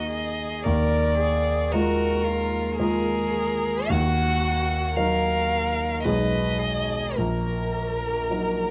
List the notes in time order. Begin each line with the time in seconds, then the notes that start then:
Already playing: A#3 D#4 A#4 D#5
0.10 G#4
0.64 D#2 A#4 D5
1.18 G#4
1.72 G#3 F4 F#4 A#4
2.25 F4
2.79 G#3 F4 G#4 A#4
3.90 D#2 F#4 F#5
4.96 F#3 D#4 A#4 F5
6.04 B1 G#3 D#4 G#4 B4 D#5
6.59 G#4
7.16 A#1 A#4
8.30 F#3 D#4 A#4